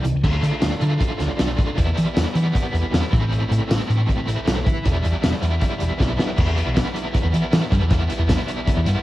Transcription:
0.04 C2 C3 E3, closed hi-hat
0.14 C#2
0.23 D2 D3 A3 D4 F4, kick, crash
0.43 D3, closed hi-hat
0.62 D2, snare, closed hi-hat, tambourine
0.81 D3 A3 D4 F4, closed hi-hat
1.01 kick, closed hi-hat
1.20 D2, snare, closed hi-hat
1.39 B1 D3 A3 D4 F4, snare, closed hi-hat, tambourine
1.59 kick, closed hi-hat
1.77 E2 E3 G3 B3 E4, kick, closed hi-hat
1.97 E3, closed hi-hat
2.17 E2, snare, closed hi-hat, tambourine
2.35 E3 G3 B3 E4, closed hi-hat
2.55 kick, closed hi-hat
2.74 E2, closed hi-hat
2.93 E2 E3 G3 B3 E4, snare, closed hi-hat, tambourine
3.13 A1 A2 E3 A3 C4 E4, kick, closed hi-hat
3.33 closed hi-hat
3.51 A2, closed hi-hat
3.70 A1 A2 E3 A3 C4 E4, snare, closed hi-hat, tambourine
3.90 A2, closed hi-hat
4.09 kick, closed hi-hat
4.27 A1 A2 E3 A3 C4 E4, closed hi-hat
4.47 B1, snare, closed hi-hat, tambourine
4.66 kick, closed hi-hat
4.85 E1 E3 G3 B3 E4, kick, closed hi-hat
5.05 E2, closed hi-hat
5.23 E1, snare, closed hi-hat, tambourine
5.42 E2 E3 G3 B3 E4, closed hi-hat
5.61 kick, closed hi-hat
5.80 E1, closed hi-hat
5.99 B1 E3 G3 B3 E4, kick, snare
6.19 snare
6.37 E2 E3 G3 B3 E4, kick, crash
6.58 G3 B3 E4, closed hi-hat
6.67 B1
6.76 E3 G3 B3 E4, kick, snare, closed hi-hat, tambourine
6.96 closed hi-hat
7.15 kick, closed hi-hat
7.24 E2
7.34 E3 G3 B3 E4, closed hi-hat
7.53 E3 G3 B3 E4, snare, closed hi-hat, tambourine
7.72 G2 G3 B3 E4, kick, closed hi-hat
7.82 E2
7.91 E2 E3 G3 B3 E4, kick, closed hi-hat
8.10 G3 B3 E4, closed hi-hat
8.19 E2
8.29 E3 G3 B3 E4, kick, snare, closed hi-hat, tambourine
8.48 closed hi-hat
8.67 kick, closed hi-hat
8.77 E2
8.86 G2 G3 B3 E4, closed hi-hat

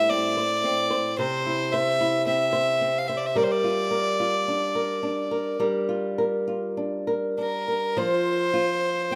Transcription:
Already playing: A2 G3 E4 C5 E5
0.10 C4 D5
0.37 C5
0.64 C4
0.91 C5
1.18 C3 C5
1.46 E4
1.72 C5 E5
2.01 E4
2.26 C4 E5
2.53 C5
2.81 C4
2.98 F5
3.08 C5 E5
3.17 D5
3.26 E5
3.35 G3 A#4 D5
3.44 C5
3.52 D5
3.64 F4
3.91 A#4
4.20 F4
4.48 D4
4.75 A#4
5.03 D4
5.31 A#4
5.60 G3 A#4
5.89 F4
6.18 A#4
6.48 F4
6.77 D4
7.07 A#4
7.38 D4 A#4
7.68 A#4
7.97 F3 C5
8.54 F4
9.11 C4 G5

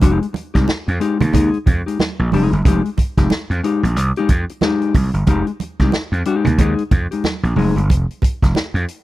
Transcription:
0.01 F1 G#3 D#4 G4, kick, closed hi-hat, muted conga
0.22 muted clean electric guitar stroke, closed hi-hat
0.33 muted clean electric guitar stroke, closed hi-hat, muted conga
0.54 C2 G#3 D#4 G4, kick, snare, closed hi-hat
0.68 snare, high conga
0.87 F2, muted clean electric guitar stroke, closed hi-hat
1.00 G#3 D#4 G4, closed hi-hat
1.20 D#2, muted clean electric guitar stroke, closed hi-hat, low conga
1.33 D#2 G#3 D#4 G#4, kick, closed hi-hat, muted conga, low conga
1.54 closed hi-hat
1.66 F2, muted clean electric guitar stroke, kick, closed hi-hat, muted conga, low conga
1.86 G#3 D#4 G4, closed hi-hat
1.99 snare, high conga
2.19 A#1, muted clean electric guitar stroke
2.32 F1 G#3 D#4 G#4, open hi-hat, high conga
2.52 G1, muted clean electric guitar stroke, closed hi-hat
2.65 F1 G#3 D#4 G4, kick, closed hi-hat, muted conga
2.84 muted clean electric guitar stroke, closed hi-hat
2.97 muted clean electric guitar stroke, kick, closed hi-hat, muted conga
3.17 F1 G#3 D#4 G4, kick, snare, closed hi-hat
3.30 muted slap bass stroke, snare, high conga
3.50 F2, muted clean electric guitar stroke, closed hi-hat
3.63 G#3 D#4 G4, closed hi-hat
3.83 A#1, muted clean electric guitar stroke, closed hi-hat
3.96 C2, muted clean electric guitar stroke, closed hi-hat, muted conga
4.16 G#3 D#4 G4, closed hi-hat
4.29 F2, kick, closed hi-hat, muted conga
4.49 muted clean electric guitar stroke, closed hi-hat
4.61 G#3 D#4 G4, snare, high conga
4.82 closed hi-hat
4.95 C2, kick, open hi-hat, high conga
5.14 G1, muted clean electric guitar stroke, closed hi-hat
5.27 F1 G#3 D#4 G4, kick, closed hi-hat, muted conga
5.47 muted clean electric guitar stroke, closed hi-hat
5.60 muted clean electric guitar stroke, closed hi-hat, muted conga
5.79 C2 G#3 D#4 G4, kick, snare, closed hi-hat
5.92 snare, high conga
6.12 F2, muted clean electric guitar stroke, closed hi-hat
6.25 G#3 D#4 G4, closed hi-hat
6.45 D#2, muted clean electric guitar stroke, closed hi-hat, low conga
6.58 D#2 G#3 D#4 G#4, kick, closed hi-hat, low conga
6.79 closed hi-hat
6.91 F2, muted clean electric guitar stroke, kick, closed hi-hat, muted conga, low conga
7.11 G#3 D#4 G4, closed hi-hat
7.24 snare, high conga
7.43 A#1, muted clean electric guitar stroke, closed hi-hat
7.56 F1 G#3 D#4 G#4, open hi-hat, high conga
7.76 G1, muted clean electric guitar stroke, closed hi-hat
7.90 F1, kick, closed hi-hat, muted conga
8.11 closed hi-hat
8.22 kick, closed hi-hat, muted conga
8.42 F1, kick, snare, closed hi-hat
8.55 snare, high conga
8.74 F2, closed hi-hat
8.88 closed hi-hat

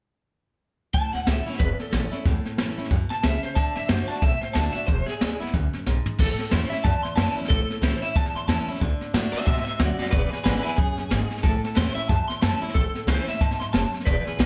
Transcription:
0.93 A1 A2 A5, kick, snare
1.13 D2 F#5, snare
1.26 C#2 E3 A3 C#4 E4 E5, snare, hi-hat pedal
1.46 C#4 E4 C#5, muted upright bass stroke, snare
1.53 snare
1.59 F#1 E2 B4, kick, snare
1.79 A4, snare
1.91 A1 E3 A3 C#4 E4, snare, hi-hat pedal
2.11 C#4 E4, muted upright bass stroke, snare
2.25 E2 A2, kick, snare
2.45 muted upright bass stroke, snare
2.58 F#2 E3 A3 C#4 E4, snare, hi-hat pedal
2.77 F#2 C#4 E4, snare
2.85 snare
2.91 F#2 B2, kick, snare
3.10 A5, muted upright bass stroke, snare
3.23 C#2 C#3 E5, snare, hi-hat pedal
3.43 C5, muted upright bass stroke, snare
3.55 D2 D3 A5, kick, snare
3.76 F#2 E5, snare
3.89 F#2 D3 A3 D4 F#4 C5, snare, hi-hat pedal
4.08 D4 F#4 A5, muted upright bass stroke, snare
4.15 snare
4.22 B1 A2 E5, kick, snare
4.41 C5, muted upright bass stroke, snare
4.53 D2 D3 A3 D4 F#4 A5, snare, hi-hat pedal
4.73 D4 F#4 E5, snare
4.87 E1 E2 C5, kick, snare
5.06 G#4, muted upright bass stroke, snare
5.20 D2 D3 G#3 B3 E4, snare, hi-hat pedal
5.40 C#2 B3 E4, snare
5.47 snare
5.54 D2 F#2, kick, snare
5.73 snare
5.86 B1 G#2, snare, hi-hat pedal
6.06 muted upright bass stroke, floor tom
6.19 A1 A2 A4, kick, snare, crash
6.39 snare
6.51 E2 E3 A3 C#4 E4 C5, snare, hi-hat pedal
6.70 C#4 E4 E5, muted upright bass stroke, snare
6.84 E2 F#2 A5, kick, snare
7.03 C6, muted upright bass stroke, snare
7.16 F#2 E3 A3 C#4 E4 A5, snare, hi-hat pedal
7.36 C#4 E4, muted upright bass stroke, snare
7.44 A4, snare
7.49 A1 A2, kick, snare
7.68 muted upright bass stroke, snare
7.82 C#2 E3 A3 C#4 E4 C5, snare, hi-hat pedal
8.01 C#4 E4 E5, muted upright bass stroke, snare
8.16 E2 A5, kick, snare
8.26 snare
8.35 F#2 C6, snare
8.48 E2 E3 A3 C#4 E4 A5, snare, hi-hat pedal
8.67 C#4 E4, muted upright bass stroke, snare
8.75 snare
8.81 D2 D3, kick, snare
9.00 muted upright bass stroke, snare
9.14 A2 D3 A3 D4 F#4, snare, hi-hat pedal
9.32 C5 E5, muted upright bass stroke, snare
9.41 snare
9.45 G#2 B2 C5 E5, kick, snare
9.57 snare
9.64 C5 E5, muted upright bass stroke, snare
9.79 D2 F#2 F#4 D5, snare, hi-hat pedal
9.99 F#4 D5, muted upright bass stroke, snare
10.06 snare
10.11 E1 E2 B4 D5, kick, snare
10.30 G#4 B4, muted upright bass stroke, snare
10.44 G#1 D3 G#3 B3 E4 G#4 B4, snare, hi-hat pedal
10.63 B3 E4 G#4 B4, snare
10.78 B1 F#2 G#4, kick, snare
10.97 C#2, snare
11.10 G#1 G#2, snare, hi-hat pedal
11.30 muted upright bass stroke, snare
11.37 snare
11.43 A1 A2 A4, kick, snare
11.63 muted upright bass stroke, snare
11.75 E2 E3 A3 C#4 E4 C5, snare, hi-hat pedal
11.95 C#4 E4 E5, muted upright bass stroke, snare
12.09 E2 F#2 A5, kick, snare
12.28 C6, muted upright bass stroke, snare
12.41 F#2 E3 A3 C#4 E4 A5, snare, hi-hat pedal
12.62 C#4 E4, muted upright bass stroke, snare
12.69 snare
12.74 A1 A2 A4, kick, snare
12.94 muted upright bass stroke, snare
13.07 C#2 E3 A3 C#4 E4 C5, snare, hi-hat pedal
13.27 C#4 E4 E5, muted upright bass stroke, snare
13.34 snare
13.41 E2 G#2 A5, kick, snare
13.51 snare
13.59 F#2 C6, snare
13.73 F#1 F#2 A5, snare, hi-hat pedal
13.92 muted upright bass stroke, snare
14.00 snare
14.05 E1 E2 B4 D5, kick, snare
14.25 G#4 B4, muted upright bass stroke, snare
14.39 B1 D3 G#3 B3 E4 G#4 B4, snare, hi-hat pedal

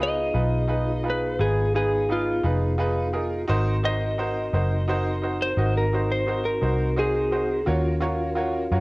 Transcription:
Already playing: C#2 B3 D#4 F4 G#4
0.00 D#4 F4 G#4 B4 D#5
0.34 B1 D#4 F4 G#4 B4
0.68 D#4 F4 G#4 B4
1.03 D#4 F4 G#4 B4
1.10 B4
1.39 G#1 D#4 F4 G#4 B4
1.74 D#4 F4 G#4 B4
2.09 D#4 F4 G#4 B4
2.43 F1 D#4 F4 G#4 B4
2.78 D#4 F4 G#4 B4
3.13 D#4 F4 G#4 A#4
3.48 G#1 C4 D#4 F#4 A#4 C5
3.83 D#4 F#4 A#4 C5 D#5
4.18 D#4 F#4 A#4 C5
4.53 F#1 D#4 F#4 A#4 C5
4.88 D#4 F#4 A#4 C5
5.22 D#4 F#4 A#4 C5
5.42 C5
5.57 G#1 D#4 F#4 A#4 D#5
5.78 A#4
5.93 D#4 F#4 A#4 C5
6.12 C5
6.26 D#4 F#4 A#4 C5
6.45 A#4
6.61 C2 D#4 F#4 A#4 C5
6.96 D#4 F#4 G#4 A#4 C5
7.31 D#4 F#4 A#4 C5
7.65 D#2 C#4 F4 F#4 A#4 C#5
8.00 F4 F#4 A#4 C#5
8.35 F4 F#4 A#4 C#5
8.71 F#2 F4 F#4 A#4 C#5

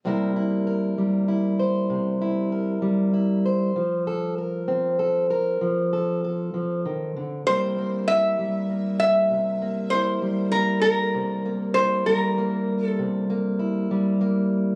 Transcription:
0.05 C3 G3 A#3 E4 A#4
0.36 E4
0.67 A#4
0.98 G3
1.28 E4
1.60 C5
1.90 C3
2.22 E4
2.52 A#4
2.82 G3
3.14 E4
3.46 C5
3.76 F3
4.07 A4
4.38 A#4
4.68 C4
4.99 A4
5.30 A#4
5.61 F3
5.93 A4
6.24 A4
6.54 F3
6.86 D#3
7.17 D3
7.47 C3 G3 A#3 E4 A#4 C5
7.78 A#3
8.08 E4 E5
8.39 G3
8.70 A#3
9.00 E5
9.30 C3
9.62 A#3
9.90 E4 C5
10.22 G3
10.52 A#3 A#4
10.81 A#4
11.15 C3
11.45 A#3
11.74 E4 C5
12.06 G3 A#4
12.38 A#3
12.84 A4
12.99 C3
13.30 A#3
13.59 E4
13.91 G3
14.21 A#3

